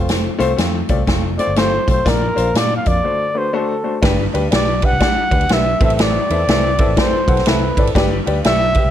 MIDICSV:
0, 0, Header, 1, 6, 480
1, 0, Start_track
1, 0, Key_signature, -1, "major"
1, 0, Tempo, 491400
1, 88, Time_signature, 4, 2, 24, 8
1, 3929, Key_signature, 1, "major"
1, 8699, End_track
2, 0, Start_track
2, 0, Title_t, "Trumpet"
2, 0, Program_c, 0, 56
2, 0, Note_on_c, 0, 65, 77
2, 104, Note_off_c, 0, 65, 0
2, 1354, Note_on_c, 0, 74, 105
2, 1536, Note_on_c, 0, 72, 104
2, 1551, Note_off_c, 0, 74, 0
2, 1852, Note_off_c, 0, 72, 0
2, 1857, Note_on_c, 0, 72, 92
2, 2040, Note_on_c, 0, 70, 97
2, 2054, Note_off_c, 0, 72, 0
2, 2509, Note_on_c, 0, 74, 110
2, 2524, Note_off_c, 0, 70, 0
2, 2698, Note_off_c, 0, 74, 0
2, 2704, Note_on_c, 0, 77, 78
2, 2805, Note_on_c, 0, 74, 108
2, 2820, Note_off_c, 0, 77, 0
2, 3301, Note_on_c, 0, 72, 90
2, 3316, Note_off_c, 0, 74, 0
2, 3465, Note_on_c, 0, 69, 77
2, 3480, Note_off_c, 0, 72, 0
2, 3937, Note_off_c, 0, 69, 0
2, 4433, Note_on_c, 0, 74, 104
2, 4737, Note_on_c, 0, 78, 115
2, 4752, Note_off_c, 0, 74, 0
2, 5400, Note_on_c, 0, 76, 102
2, 5415, Note_off_c, 0, 78, 0
2, 5689, Note_off_c, 0, 76, 0
2, 5705, Note_on_c, 0, 76, 93
2, 5814, Note_off_c, 0, 76, 0
2, 5814, Note_on_c, 0, 76, 80
2, 5877, Note_on_c, 0, 74, 105
2, 5891, Note_off_c, 0, 76, 0
2, 6822, Note_off_c, 0, 74, 0
2, 6830, Note_on_c, 0, 72, 89
2, 7306, Note_on_c, 0, 71, 81
2, 7321, Note_off_c, 0, 72, 0
2, 7690, Note_off_c, 0, 71, 0
2, 8261, Note_on_c, 0, 76, 120
2, 8699, Note_off_c, 0, 76, 0
2, 8699, End_track
3, 0, Start_track
3, 0, Title_t, "Upright piano"
3, 0, Program_c, 1, 0
3, 0, Note_on_c, 1, 57, 76
3, 0, Note_on_c, 1, 60, 76
3, 0, Note_on_c, 1, 65, 74
3, 0, Note_on_c, 1, 72, 84
3, 261, Note_off_c, 1, 57, 0
3, 264, Note_off_c, 1, 60, 0
3, 264, Note_off_c, 1, 65, 0
3, 295, Note_off_c, 1, 72, 0
3, 376, Note_on_c, 1, 57, 113
3, 376, Note_on_c, 1, 60, 100
3, 378, Note_on_c, 1, 65, 103
3, 387, Note_on_c, 1, 72, 121
3, 491, Note_off_c, 1, 57, 0
3, 491, Note_off_c, 1, 60, 0
3, 492, Note_off_c, 1, 65, 0
3, 497, Note_off_c, 1, 72, 0
3, 551, Note_on_c, 1, 57, 95
3, 558, Note_on_c, 1, 72, 106
3, 559, Note_on_c, 1, 60, 90
3, 559, Note_on_c, 1, 65, 82
3, 745, Note_off_c, 1, 57, 0
3, 749, Note_off_c, 1, 60, 0
3, 749, Note_off_c, 1, 65, 0
3, 749, Note_off_c, 1, 72, 0
3, 872, Note_on_c, 1, 57, 88
3, 874, Note_on_c, 1, 65, 82
3, 875, Note_on_c, 1, 60, 81
3, 878, Note_on_c, 1, 74, 97
3, 979, Note_off_c, 1, 57, 0
3, 980, Note_off_c, 1, 60, 0
3, 980, Note_off_c, 1, 65, 0
3, 982, Note_off_c, 1, 74, 0
3, 1039, Note_on_c, 1, 57, 85
3, 1045, Note_on_c, 1, 60, 79
3, 1049, Note_on_c, 1, 65, 66
3, 1049, Note_on_c, 1, 72, 86
3, 1230, Note_off_c, 1, 57, 0
3, 1232, Note_off_c, 1, 60, 0
3, 1234, Note_off_c, 1, 72, 0
3, 1235, Note_off_c, 1, 65, 0
3, 1350, Note_on_c, 1, 57, 73
3, 1356, Note_on_c, 1, 60, 74
3, 1360, Note_on_c, 1, 65, 66
3, 1361, Note_on_c, 1, 72, 83
3, 1458, Note_off_c, 1, 57, 0
3, 1461, Note_off_c, 1, 60, 0
3, 1463, Note_off_c, 1, 65, 0
3, 1464, Note_off_c, 1, 72, 0
3, 1526, Note_on_c, 1, 57, 104
3, 1530, Note_on_c, 1, 65, 85
3, 1531, Note_on_c, 1, 60, 87
3, 1531, Note_on_c, 1, 72, 107
3, 1713, Note_off_c, 1, 57, 0
3, 1715, Note_off_c, 1, 60, 0
3, 1715, Note_off_c, 1, 65, 0
3, 1716, Note_off_c, 1, 72, 0
3, 1832, Note_on_c, 1, 57, 78
3, 1838, Note_on_c, 1, 60, 67
3, 1839, Note_on_c, 1, 65, 64
3, 1839, Note_on_c, 1, 72, 85
3, 1939, Note_off_c, 1, 57, 0
3, 1942, Note_off_c, 1, 60, 0
3, 1943, Note_off_c, 1, 65, 0
3, 1943, Note_off_c, 1, 72, 0
3, 1999, Note_on_c, 1, 58, 101
3, 2004, Note_on_c, 1, 65, 90
3, 2006, Note_on_c, 1, 46, 65
3, 2007, Note_on_c, 1, 74, 112
3, 2008, Note_on_c, 1, 62, 85
3, 2190, Note_off_c, 1, 58, 0
3, 2192, Note_off_c, 1, 65, 0
3, 2194, Note_off_c, 1, 62, 0
3, 2194, Note_off_c, 1, 74, 0
3, 2300, Note_on_c, 1, 58, 92
3, 2303, Note_on_c, 1, 62, 88
3, 2310, Note_on_c, 1, 65, 86
3, 2312, Note_on_c, 1, 72, 106
3, 2414, Note_off_c, 1, 58, 0
3, 2415, Note_off_c, 1, 62, 0
3, 2418, Note_off_c, 1, 65, 0
3, 2419, Note_off_c, 1, 72, 0
3, 2498, Note_on_c, 1, 62, 73
3, 2499, Note_on_c, 1, 58, 75
3, 2506, Note_on_c, 1, 65, 73
3, 2508, Note_on_c, 1, 74, 86
3, 2679, Note_off_c, 1, 62, 0
3, 2680, Note_off_c, 1, 58, 0
3, 2683, Note_off_c, 1, 65, 0
3, 2684, Note_off_c, 1, 74, 0
3, 2753, Note_off_c, 1, 46, 0
3, 2797, Note_on_c, 1, 58, 75
3, 2800, Note_on_c, 1, 62, 70
3, 2803, Note_on_c, 1, 65, 67
3, 2808, Note_on_c, 1, 74, 84
3, 2902, Note_off_c, 1, 58, 0
3, 2904, Note_off_c, 1, 62, 0
3, 2905, Note_off_c, 1, 65, 0
3, 2907, Note_off_c, 1, 74, 0
3, 2967, Note_on_c, 1, 57, 73
3, 2969, Note_on_c, 1, 50, 53
3, 2971, Note_on_c, 1, 66, 66
3, 2973, Note_on_c, 1, 62, 62
3, 2980, Note_on_c, 1, 72, 76
3, 3154, Note_off_c, 1, 57, 0
3, 3156, Note_off_c, 1, 66, 0
3, 3157, Note_off_c, 1, 62, 0
3, 3160, Note_off_c, 1, 72, 0
3, 3265, Note_on_c, 1, 57, 72
3, 3268, Note_on_c, 1, 62, 73
3, 3271, Note_on_c, 1, 71, 81
3, 3272, Note_on_c, 1, 66, 68
3, 3376, Note_off_c, 1, 57, 0
3, 3378, Note_off_c, 1, 62, 0
3, 3379, Note_off_c, 1, 71, 0
3, 3380, Note_off_c, 1, 66, 0
3, 3448, Note_on_c, 1, 62, 85
3, 3450, Note_on_c, 1, 57, 95
3, 3452, Note_on_c, 1, 66, 91
3, 3454, Note_on_c, 1, 72, 109
3, 3634, Note_off_c, 1, 62, 0
3, 3635, Note_off_c, 1, 57, 0
3, 3637, Note_off_c, 1, 66, 0
3, 3637, Note_off_c, 1, 72, 0
3, 3715, Note_off_c, 1, 50, 0
3, 3748, Note_on_c, 1, 62, 66
3, 3748, Note_on_c, 1, 66, 70
3, 3749, Note_on_c, 1, 57, 77
3, 3755, Note_on_c, 1, 72, 80
3, 3858, Note_off_c, 1, 57, 0
3, 3858, Note_off_c, 1, 62, 0
3, 3858, Note_off_c, 1, 66, 0
3, 3861, Note_off_c, 1, 72, 0
3, 3924, Note_on_c, 1, 62, 97
3, 3927, Note_on_c, 1, 43, 70
3, 3931, Note_on_c, 1, 67, 93
3, 3933, Note_on_c, 1, 71, 110
3, 4113, Note_off_c, 1, 62, 0
3, 4116, Note_off_c, 1, 67, 0
3, 4117, Note_off_c, 1, 71, 0
3, 4237, Note_on_c, 1, 62, 84
3, 4239, Note_on_c, 1, 67, 80
3, 4245, Note_on_c, 1, 71, 104
3, 4342, Note_off_c, 1, 62, 0
3, 4343, Note_off_c, 1, 67, 0
3, 4346, Note_off_c, 1, 71, 0
3, 4405, Note_on_c, 1, 62, 75
3, 4411, Note_on_c, 1, 67, 76
3, 4412, Note_on_c, 1, 71, 85
3, 4593, Note_off_c, 1, 62, 0
3, 4596, Note_off_c, 1, 67, 0
3, 4597, Note_off_c, 1, 71, 0
3, 4674, Note_off_c, 1, 43, 0
3, 4717, Note_on_c, 1, 67, 73
3, 4718, Note_on_c, 1, 71, 83
3, 4719, Note_on_c, 1, 62, 73
3, 4822, Note_off_c, 1, 67, 0
3, 4823, Note_off_c, 1, 62, 0
3, 4823, Note_off_c, 1, 71, 0
3, 4885, Note_on_c, 1, 67, 79
3, 4887, Note_on_c, 1, 62, 90
3, 4889, Note_on_c, 1, 74, 100
3, 5073, Note_off_c, 1, 67, 0
3, 5074, Note_off_c, 1, 62, 0
3, 5075, Note_off_c, 1, 74, 0
3, 5187, Note_on_c, 1, 62, 74
3, 5193, Note_on_c, 1, 67, 68
3, 5193, Note_on_c, 1, 71, 85
3, 5297, Note_off_c, 1, 62, 0
3, 5300, Note_off_c, 1, 67, 0
3, 5300, Note_off_c, 1, 71, 0
3, 5369, Note_on_c, 1, 67, 72
3, 5371, Note_on_c, 1, 62, 74
3, 5373, Note_on_c, 1, 71, 89
3, 5555, Note_off_c, 1, 67, 0
3, 5556, Note_off_c, 1, 62, 0
3, 5557, Note_off_c, 1, 71, 0
3, 5672, Note_on_c, 1, 60, 84
3, 5675, Note_on_c, 1, 64, 75
3, 5677, Note_on_c, 1, 71, 75
3, 5679, Note_on_c, 1, 69, 76
3, 5680, Note_on_c, 1, 45, 67
3, 5683, Note_on_c, 1, 76, 86
3, 6031, Note_off_c, 1, 60, 0
3, 6032, Note_off_c, 1, 64, 0
3, 6033, Note_off_c, 1, 71, 0
3, 6034, Note_off_c, 1, 69, 0
3, 6036, Note_off_c, 1, 76, 0
3, 6161, Note_on_c, 1, 64, 71
3, 6162, Note_on_c, 1, 60, 75
3, 6162, Note_on_c, 1, 71, 68
3, 6163, Note_on_c, 1, 69, 71
3, 6166, Note_on_c, 1, 76, 81
3, 6264, Note_off_c, 1, 64, 0
3, 6265, Note_off_c, 1, 60, 0
3, 6265, Note_off_c, 1, 69, 0
3, 6265, Note_off_c, 1, 71, 0
3, 6266, Note_off_c, 1, 76, 0
3, 6292, Note_off_c, 1, 45, 0
3, 6333, Note_on_c, 1, 60, 78
3, 6335, Note_on_c, 1, 64, 71
3, 6338, Note_on_c, 1, 69, 69
3, 6341, Note_on_c, 1, 71, 76
3, 6342, Note_on_c, 1, 76, 91
3, 6517, Note_off_c, 1, 60, 0
3, 6518, Note_off_c, 1, 64, 0
3, 6519, Note_off_c, 1, 69, 0
3, 6521, Note_off_c, 1, 71, 0
3, 6521, Note_off_c, 1, 76, 0
3, 6636, Note_on_c, 1, 69, 78
3, 6639, Note_on_c, 1, 71, 78
3, 6640, Note_on_c, 1, 64, 81
3, 6641, Note_on_c, 1, 60, 86
3, 6645, Note_on_c, 1, 76, 96
3, 6742, Note_off_c, 1, 69, 0
3, 6743, Note_off_c, 1, 71, 0
3, 6744, Note_off_c, 1, 60, 0
3, 6744, Note_off_c, 1, 64, 0
3, 6746, Note_off_c, 1, 76, 0
3, 6802, Note_on_c, 1, 64, 80
3, 6807, Note_on_c, 1, 60, 91
3, 6809, Note_on_c, 1, 69, 77
3, 6809, Note_on_c, 1, 71, 78
3, 6812, Note_on_c, 1, 74, 105
3, 6991, Note_off_c, 1, 64, 0
3, 6994, Note_off_c, 1, 60, 0
3, 6995, Note_off_c, 1, 69, 0
3, 6995, Note_off_c, 1, 71, 0
3, 6996, Note_off_c, 1, 74, 0
3, 7111, Note_on_c, 1, 60, 78
3, 7112, Note_on_c, 1, 64, 70
3, 7113, Note_on_c, 1, 69, 67
3, 7114, Note_on_c, 1, 71, 71
3, 7119, Note_on_c, 1, 78, 87
3, 7219, Note_off_c, 1, 60, 0
3, 7219, Note_off_c, 1, 64, 0
3, 7220, Note_off_c, 1, 69, 0
3, 7220, Note_off_c, 1, 71, 0
3, 7223, Note_off_c, 1, 78, 0
3, 7291, Note_on_c, 1, 64, 69
3, 7293, Note_on_c, 1, 71, 76
3, 7294, Note_on_c, 1, 60, 80
3, 7297, Note_on_c, 1, 69, 75
3, 7300, Note_on_c, 1, 76, 85
3, 7476, Note_off_c, 1, 64, 0
3, 7477, Note_off_c, 1, 60, 0
3, 7477, Note_off_c, 1, 71, 0
3, 7478, Note_off_c, 1, 69, 0
3, 7480, Note_off_c, 1, 76, 0
3, 7595, Note_on_c, 1, 60, 74
3, 7597, Note_on_c, 1, 64, 71
3, 7599, Note_on_c, 1, 69, 70
3, 7600, Note_on_c, 1, 71, 71
3, 7608, Note_on_c, 1, 74, 90
3, 7701, Note_off_c, 1, 60, 0
3, 7702, Note_off_c, 1, 64, 0
3, 7703, Note_off_c, 1, 69, 0
3, 7704, Note_off_c, 1, 71, 0
3, 7708, Note_off_c, 1, 74, 0
3, 7765, Note_on_c, 1, 67, 116
3, 7771, Note_on_c, 1, 71, 118
3, 7771, Note_on_c, 1, 74, 127
3, 7772, Note_on_c, 1, 43, 83
3, 7953, Note_off_c, 1, 67, 0
3, 7956, Note_off_c, 1, 71, 0
3, 7956, Note_off_c, 1, 74, 0
3, 8074, Note_on_c, 1, 67, 90
3, 8079, Note_on_c, 1, 71, 90
3, 8084, Note_on_c, 1, 74, 93
3, 8181, Note_off_c, 1, 67, 0
3, 8183, Note_off_c, 1, 71, 0
3, 8185, Note_off_c, 1, 74, 0
3, 8256, Note_on_c, 1, 67, 81
3, 8261, Note_on_c, 1, 71, 78
3, 8263, Note_on_c, 1, 74, 97
3, 8438, Note_off_c, 1, 67, 0
3, 8441, Note_off_c, 1, 71, 0
3, 8442, Note_off_c, 1, 74, 0
3, 8516, Note_off_c, 1, 43, 0
3, 8564, Note_on_c, 1, 67, 81
3, 8567, Note_on_c, 1, 71, 70
3, 8568, Note_on_c, 1, 76, 83
3, 8665, Note_off_c, 1, 67, 0
3, 8667, Note_off_c, 1, 71, 0
3, 8668, Note_off_c, 1, 76, 0
3, 8699, End_track
4, 0, Start_track
4, 0, Title_t, "Fingered electric bass"
4, 0, Program_c, 2, 33
4, 0, Note_on_c, 2, 29, 93
4, 266, Note_off_c, 2, 29, 0
4, 387, Note_on_c, 2, 36, 92
4, 519, Note_off_c, 2, 36, 0
4, 568, Note_on_c, 2, 41, 84
4, 795, Note_off_c, 2, 41, 0
4, 875, Note_on_c, 2, 36, 94
4, 1004, Note_off_c, 2, 36, 0
4, 1048, Note_on_c, 2, 29, 107
4, 1340, Note_off_c, 2, 29, 0
4, 1438, Note_on_c, 2, 31, 86
4, 1731, Note_off_c, 2, 31, 0
4, 1837, Note_on_c, 2, 35, 93
4, 1966, Note_off_c, 2, 35, 0
4, 2008, Note_on_c, 2, 34, 106
4, 2236, Note_off_c, 2, 34, 0
4, 2316, Note_on_c, 2, 34, 103
4, 2445, Note_off_c, 2, 34, 0
4, 2483, Note_on_c, 2, 46, 94
4, 2712, Note_off_c, 2, 46, 0
4, 2803, Note_on_c, 2, 41, 93
4, 2930, Note_off_c, 2, 41, 0
4, 3931, Note_on_c, 2, 31, 98
4, 4157, Note_off_c, 2, 31, 0
4, 4243, Note_on_c, 2, 38, 88
4, 4370, Note_off_c, 2, 38, 0
4, 4413, Note_on_c, 2, 35, 92
4, 4704, Note_off_c, 2, 35, 0
4, 4802, Note_on_c, 2, 36, 86
4, 4867, Note_off_c, 2, 36, 0
4, 5189, Note_on_c, 2, 38, 101
4, 5321, Note_off_c, 2, 38, 0
4, 5373, Note_on_c, 2, 35, 92
4, 5599, Note_off_c, 2, 35, 0
4, 5676, Note_on_c, 2, 33, 101
4, 6032, Note_off_c, 2, 33, 0
4, 6154, Note_on_c, 2, 40, 89
4, 6284, Note_off_c, 2, 40, 0
4, 6323, Note_on_c, 2, 36, 87
4, 6618, Note_off_c, 2, 36, 0
4, 6715, Note_on_c, 2, 33, 87
4, 6782, Note_off_c, 2, 33, 0
4, 7109, Note_on_c, 2, 35, 97
4, 7241, Note_off_c, 2, 35, 0
4, 7294, Note_on_c, 2, 36, 93
4, 7519, Note_off_c, 2, 36, 0
4, 7589, Note_on_c, 2, 32, 87
4, 7721, Note_off_c, 2, 32, 0
4, 7770, Note_on_c, 2, 31, 103
4, 7997, Note_off_c, 2, 31, 0
4, 8078, Note_on_c, 2, 38, 95
4, 8207, Note_off_c, 2, 38, 0
4, 8255, Note_on_c, 2, 35, 92
4, 8545, Note_off_c, 2, 35, 0
4, 8641, Note_on_c, 2, 36, 89
4, 8699, Note_off_c, 2, 36, 0
4, 8699, End_track
5, 0, Start_track
5, 0, Title_t, "Muted fingered electric bass strokes"
5, 5044, Note_on_c, 9, 29, 44
5, 5142, Note_off_c, 9, 29, 0
5, 6964, Note_on_c, 9, 29, 46
5, 7062, Note_off_c, 9, 29, 0
5, 8699, End_track
6, 0, Start_track
6, 0, Title_t, "Drums"
6, 85, Note_on_c, 9, 42, 95
6, 95, Note_on_c, 9, 38, 119
6, 183, Note_off_c, 9, 42, 0
6, 193, Note_off_c, 9, 38, 0
6, 393, Note_on_c, 9, 42, 62
6, 490, Note_off_c, 9, 42, 0
6, 569, Note_on_c, 9, 42, 96
6, 578, Note_on_c, 9, 38, 115
6, 667, Note_off_c, 9, 42, 0
6, 676, Note_off_c, 9, 38, 0
6, 866, Note_on_c, 9, 42, 66
6, 874, Note_on_c, 9, 36, 96
6, 964, Note_off_c, 9, 42, 0
6, 971, Note_off_c, 9, 36, 0
6, 1047, Note_on_c, 9, 42, 72
6, 1049, Note_on_c, 9, 36, 90
6, 1058, Note_on_c, 9, 38, 114
6, 1145, Note_off_c, 9, 42, 0
6, 1147, Note_off_c, 9, 36, 0
6, 1156, Note_off_c, 9, 38, 0
6, 1356, Note_on_c, 9, 42, 68
6, 1454, Note_off_c, 9, 42, 0
6, 1526, Note_on_c, 9, 42, 86
6, 1539, Note_on_c, 9, 38, 112
6, 1624, Note_off_c, 9, 42, 0
6, 1637, Note_off_c, 9, 38, 0
6, 1834, Note_on_c, 9, 36, 98
6, 1836, Note_on_c, 9, 42, 78
6, 1932, Note_off_c, 9, 36, 0
6, 1933, Note_off_c, 9, 42, 0
6, 2011, Note_on_c, 9, 36, 111
6, 2014, Note_on_c, 9, 42, 99
6, 2024, Note_on_c, 9, 38, 118
6, 2108, Note_off_c, 9, 36, 0
6, 2112, Note_off_c, 9, 42, 0
6, 2122, Note_off_c, 9, 38, 0
6, 2320, Note_on_c, 9, 42, 62
6, 2417, Note_off_c, 9, 42, 0
6, 2493, Note_on_c, 9, 42, 97
6, 2502, Note_on_c, 9, 38, 113
6, 2590, Note_off_c, 9, 42, 0
6, 2600, Note_off_c, 9, 38, 0
6, 2790, Note_on_c, 9, 42, 69
6, 2798, Note_on_c, 9, 36, 90
6, 2888, Note_off_c, 9, 42, 0
6, 2896, Note_off_c, 9, 36, 0
6, 3932, Note_on_c, 9, 36, 119
6, 3934, Note_on_c, 9, 51, 87
6, 3944, Note_on_c, 9, 38, 123
6, 4030, Note_off_c, 9, 36, 0
6, 4031, Note_off_c, 9, 51, 0
6, 4041, Note_off_c, 9, 38, 0
6, 4245, Note_on_c, 9, 51, 55
6, 4342, Note_off_c, 9, 51, 0
6, 4413, Note_on_c, 9, 51, 82
6, 4422, Note_on_c, 9, 38, 110
6, 4511, Note_off_c, 9, 51, 0
6, 4520, Note_off_c, 9, 38, 0
6, 4709, Note_on_c, 9, 51, 59
6, 4717, Note_on_c, 9, 36, 102
6, 4807, Note_off_c, 9, 51, 0
6, 4815, Note_off_c, 9, 36, 0
6, 4887, Note_on_c, 9, 51, 61
6, 4890, Note_on_c, 9, 36, 90
6, 4898, Note_on_c, 9, 38, 114
6, 4985, Note_off_c, 9, 51, 0
6, 4988, Note_off_c, 9, 36, 0
6, 4996, Note_off_c, 9, 38, 0
6, 5191, Note_on_c, 9, 36, 101
6, 5193, Note_on_c, 9, 51, 57
6, 5282, Note_off_c, 9, 51, 0
6, 5282, Note_on_c, 9, 51, 42
6, 5289, Note_off_c, 9, 36, 0
6, 5365, Note_off_c, 9, 51, 0
6, 5365, Note_on_c, 9, 51, 73
6, 5378, Note_on_c, 9, 38, 113
6, 5463, Note_off_c, 9, 51, 0
6, 5475, Note_off_c, 9, 38, 0
6, 5672, Note_on_c, 9, 36, 116
6, 5672, Note_on_c, 9, 51, 66
6, 5764, Note_off_c, 9, 51, 0
6, 5764, Note_on_c, 9, 51, 55
6, 5770, Note_off_c, 9, 36, 0
6, 5849, Note_off_c, 9, 51, 0
6, 5849, Note_on_c, 9, 51, 81
6, 5859, Note_on_c, 9, 38, 126
6, 5947, Note_off_c, 9, 51, 0
6, 5957, Note_off_c, 9, 38, 0
6, 6158, Note_on_c, 9, 51, 57
6, 6255, Note_off_c, 9, 51, 0
6, 6335, Note_on_c, 9, 51, 82
6, 6344, Note_on_c, 9, 38, 115
6, 6432, Note_off_c, 9, 51, 0
6, 6442, Note_off_c, 9, 38, 0
6, 6628, Note_on_c, 9, 51, 61
6, 6635, Note_on_c, 9, 36, 99
6, 6725, Note_off_c, 9, 51, 0
6, 6732, Note_off_c, 9, 36, 0
6, 6808, Note_on_c, 9, 51, 66
6, 6809, Note_on_c, 9, 36, 85
6, 6819, Note_on_c, 9, 38, 112
6, 6905, Note_off_c, 9, 51, 0
6, 6907, Note_off_c, 9, 36, 0
6, 6917, Note_off_c, 9, 38, 0
6, 7109, Note_on_c, 9, 36, 100
6, 7113, Note_on_c, 9, 51, 62
6, 7199, Note_off_c, 9, 51, 0
6, 7199, Note_on_c, 9, 51, 43
6, 7207, Note_off_c, 9, 36, 0
6, 7209, Note_on_c, 9, 38, 36
6, 7283, Note_off_c, 9, 51, 0
6, 7283, Note_on_c, 9, 51, 76
6, 7296, Note_off_c, 9, 38, 0
6, 7296, Note_on_c, 9, 38, 114
6, 7381, Note_off_c, 9, 51, 0
6, 7394, Note_off_c, 9, 38, 0
6, 7591, Note_on_c, 9, 36, 95
6, 7593, Note_on_c, 9, 51, 68
6, 7689, Note_off_c, 9, 36, 0
6, 7690, Note_off_c, 9, 51, 0
6, 7690, Note_on_c, 9, 51, 55
6, 7768, Note_on_c, 9, 36, 115
6, 7773, Note_off_c, 9, 51, 0
6, 7773, Note_on_c, 9, 51, 81
6, 7783, Note_on_c, 9, 38, 120
6, 7865, Note_off_c, 9, 36, 0
6, 7871, Note_off_c, 9, 51, 0
6, 7881, Note_off_c, 9, 38, 0
6, 8079, Note_on_c, 9, 51, 55
6, 8177, Note_off_c, 9, 51, 0
6, 8248, Note_on_c, 9, 51, 81
6, 8257, Note_on_c, 9, 38, 114
6, 8346, Note_off_c, 9, 51, 0
6, 8355, Note_off_c, 9, 38, 0
6, 8542, Note_on_c, 9, 51, 59
6, 8553, Note_on_c, 9, 36, 97
6, 8640, Note_off_c, 9, 51, 0
6, 8650, Note_off_c, 9, 36, 0
6, 8699, End_track
0, 0, End_of_file